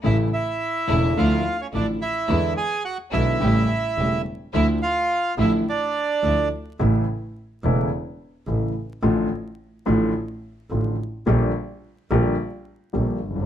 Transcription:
<<
  \new Staff \with { instrumentName = "Bandoneon" } { \time 4/4 \key d \minor \tempo 4 = 107 <e' e''>8 <e' e''>4. <f' f''>8. <cis' cis''>16 <d' d''>8 <e' e''>8~ | <e' e''>8 <gis' gis''>8 <fis' fis''>8 <e' e''>2 r8 | <e' e''>8 <f' f''>4 <e' e''>8 <d' d''>4. r8 | r1 |
r1 | r1 | }
  \new Staff \with { instrumentName = "String section" } { \time 4/4 \key d \minor <a cis' e'>8 r4 <a cis' e'>8 <f d' e'>8 r8 <f d' e'>8 r8 | <gis d' e'>8 r4 <gis d' e'>8 <a cis' g'>8 r8 <a cis' g'>8 r8 | <f d' e'>8 r4 <f d' e'>8 r4 <f d' e'>8 r8 | r1 |
r1 | r1 | }
  \new Staff \with { instrumentName = "Grand piano" } { \clef bass \time 4/4 \key d \minor <a,, a, cis e a e'>8 r4 <e,, e, cis e a e'>8 <d, d f a e'>8 r8 <a,, a, d f a e'>8 r8 | <e, d e gis b e'>8 r4 <b,, b, d gis b e'>8 <a,, a, cis g a e'>8 r8 <e,, e, cis g a e'>8 r8 | <d, d f a e'>8 r4 <a,, a, d f a e'>8 r4 <d, d f a e'>8 r8 | <a,, a, cis e a e'>8 r4 <e,, e, cis e a e'>8 r4 <a,, a, cis e a e'>8 r8 |
<a,, a, d f a f'>8 r4 <a,, a, d f a f'>8 r4 <a,, a, d f a f'>8 r8 | <bes,, bes, d g bes g'>8 r4 <bes,, bes, d g bes g'>8 r4 <bes,, bes, d g bes g'>8 r32 fis,,32 g,,32 gis,,32 | }
  \new Staff \with { instrumentName = "Double bass" } { \clef bass \time 4/4 \key d \minor a,,8 r4 e,,8 d,8 r8 a,,8 r8 | e,8 r4 b,,8 a,,8 r8 e,,8 r8 | d,8 r4 a,,8 r4 d,8 r8 | a,,8 r4 e,,8 r4 a,,8 r8 |
a,,8 r4 a,,8 r4 a,,8 r8 | bes,,8 r4 bes,,8 r4 bes,,8 g,,8 | }
>>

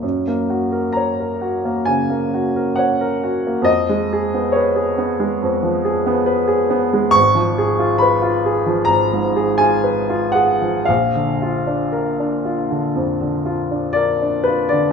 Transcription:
\new Staff \with { instrumentName = "Grand piano" } { \time 4/4 \key fis \major \tempo 4 = 66 << { r4 ais''4 gis''4 fis''4 | dis''4 cis''2~ cis''8 r8 | \key bes \phrygian des'''4 ces'''4 bes''8. aes''8. ges''8 | f''2. d''8 ces''16 d''16 | } \\ { fis,16 ais16 fis'16 ais'16 cis''16 ais'16 fis'16 ais16 cis16 ais16 fis'16 ais'16 cis''16 ais'16 fis'16 ais16 | eis,16 gis16 gis'16 b16 b'16 gis'16 b16 gis16 eis,16 eis16 gis'16 b16 b'16 gis'16 b16 gis16 | aes,,16 f16 aes'16 f'16 ces''16 f'16 aes'16 f16 aes,,16 aes,16 aes'16 f'16 ces''16 f'16 aes'16 f16 | bes,,16 d16 f'16 d'16 bes'16 d'16 f'16 d16 f,16 d16 f'16 d'16 bes'16 d'16 f'16 d16 | } >> }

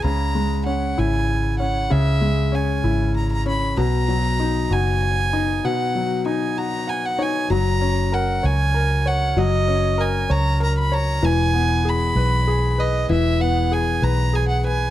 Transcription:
<<
  \new Staff \with { instrumentName = "Violin" } { \time 6/8 \key fis \mixolydian \tempo 4. = 64 ais''4 fis''8 gis''4 fis''8 | e''4 gis''4 ais''16 ais''16 b''8 | ais''4. gis''4. | fis''4 gis''8 ais''8 gis''16 fis''16 gis''8 |
ais''4 fis''8 gis''4 fis''8 | dis''4 gis''8 ais''8 ais''16 b''16 ais''8 | gis''4 b''4. dis''8 | e''8 fis''8 gis''8 ais''8 gis''16 fis''16 gis''8 | }
  \new Staff \with { instrumentName = "Grand piano" } { \time 6/8 \key fis \mixolydian << { r2. | r2. | r2. | r2 fis''8 cis''8 |
r2. | r2. | r2. | r2. | } \\ { cis8 gis8 cis'8 e'4 cis'8 | cis8 gis8 cis'8 e'4 cis'8 | b,8 fis8 dis'8 fis'4 dis'8 | b,8 fis8 dis'8 fis'4 dis'8 |
fis8 cis'8 ais'8 cis''8 ais'8 cis''8 | fis8 cis'8 ais'8 cis''8 ais'8 cis''8 | e8 b8 gis'8 b'8 gis'8 b'8 | e8 b8 gis'8 b'8 gis'8 b'8 | } >> }
  \new Staff \with { instrumentName = "Fingered electric bass" } { \clef bass \time 6/8 \key fis \mixolydian cis,4. gis,,4. | cis,4. gis,,4. | b,,4. fis,,4. | r2. |
fis,,4. cis,4. | fis,,4. cis,4. | e,,4. b,,4. | e,,4. b,,4. | }
>>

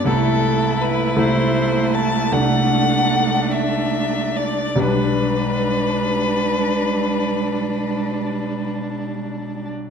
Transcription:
<<
  \new Staff \with { instrumentName = "Violin" } { \time 12/8 \key g \major \tempo 4. = 48 a'4 b'8 c''4 a''8 fis''4. e''4 d''8 | b'1~ b'8 r4. | }
  \new Staff \with { instrumentName = "Violin" } { \time 12/8 \key g \major e'2. d'2. | d'1~ d'4.~ d'16 r16 | }
  \new Staff \with { instrumentName = "Grand piano" } { \time 12/8 \key g \major <c, a e' a'>4. <c, a e' a'>4. <c, a d' a'>2. | <b,, g d' b'>1. | }
  \new Staff \with { instrumentName = "Cello" } { \clef bass \time 12/8 \key g \major a1. | g1~ g4.~ g16 r16 | }
>>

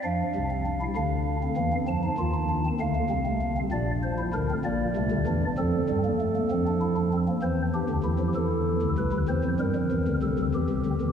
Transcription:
<<
  \new Staff \with { instrumentName = "Pipe organ" } { \time 12/8 \key f \major \tempo 4. = 65 << { f''4. f''4. a''4. f''4. | d''8 c''8 bes'8 d''4. a'2. | c''8 g'4 a'4 b'8 c''8 bes'4 a'8 g'4 | } \\ { d'8. c'16 d'16 e'16 d'8. c'16 bes16 c'16 d'16 ees'16 f'16 ees'16 d'16 c'16 a16 bes16 c'16 a16 bes16 c'16 | d'8. e'16 d'16 c'16 bes8 a8 d'8 c'8. bes16 a16 bes16 c'16 d'16 e'16 d'16 c'16 bes16 | c'8 d'8 e'2 c'2. | } >> }
  \new Staff \with { instrumentName = "Pipe organ" } { \clef bass \time 12/8 \key f \major <f, f>8 <c, c>4 <d, d>4 <e, e>8 <f, f>8 <ees, ees>4 <d, d>8 <c, c>4 | <bes,, bes,>4 <d, d>8 <bes,, bes,>8 <c, c>16 <d, d>16 <e, e>8 <f, f>8 <g, g>8 r8 <f, f>4. | <e, e>8. <d, d>16 <e, e>16 <f, f>16 <e, e>8. <d, d>16 <c, c>16 <d, d>16 <e, e>16 <f, f>16 <g, g>16 <f, f>16 <e, e>16 <d, d>16 <c, c>16 <d, d>16 <e, e>16 <c, c>16 <d, d>16 <e, e>16 | }
>>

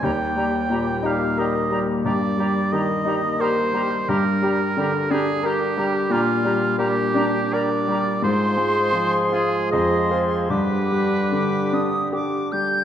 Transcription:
<<
  \new Staff \with { instrumentName = "Flute" } { \time 3/4 \key g \phrygian \tempo 4 = 88 bes''8 bes''8 bes''8 bes''8 bes''8 bes''8 | bes''8 bes''8 bes''8 bes''8 bes''8 bes''8 | bes''8 bes''8 bes''8 bes''8 bes''8 bes''8 | bes''8 bes''8 bes''8 bes''8 bes''8 bes''8 |
c'''2 c'''4 | d'''4 d'''8 ees'''8 d'''8 g'''8 | }
  \new Staff \with { instrumentName = "Oboe" } { \time 3/4 \key g \phrygian g''4. f''8 ees''8 r8 | d''4 ees''4 c''4 | bes'4. aes'8 g'4 | f'4 g'4 d''4 |
c''4. aes'8 ees''8 r8 | b'2 r4 | }
  \new Staff \with { instrumentName = "Clarinet" } { \time 3/4 \key g \phrygian g'8 g'8 g'8 g'8 g'8 g'8 | g'8 g'8 g'8 g'8 g'8 g'8 | g'8 g'8 g'8 g'8 g'8 g'8 | g'8 g'8 g'8 g'8 g'8 g'8 |
aes'2 aes'4 | g'2~ g'8 r8 | }
  \new Staff \with { instrumentName = "French horn section" } { \time 3/4 \key g \phrygian <g bes>2.~ | <g bes>2. | <g d'>2.~ | <g d'>2. |
<aes f'>2. | <g d'>2~ <g d'>8 r8 | }
  \new Staff \with { instrumentName = "Bassoon" } { \clef bass \time 3/4 \key g \phrygian g8 g8 g8 g8 g8 g8 | g8 g8 g8 g8 g8 g8 | g8 g8 g8 g8 g8 g8 | g8 g8 g8 g8 g8 g8 |
f2 f4 | d2~ d8 r8 | }
  \new Staff \with { instrumentName = "Grand piano" } { \clef bass \time 3/4 \key g \phrygian ees,8 g8 bes,8 ees'8 bes'8 g8 | g,8 g8 ees8 ees'8 bes'8 g8 | g,8 g8 d8 d'8 bes'8 g8 | bes,8 g8 bes8 d'8 bes'8 g8 |
aes,8 aes8 f8 f'8 f,8 <f' c''>8 | g,8 g8 d8 d'8 g'8 g8 | }
>>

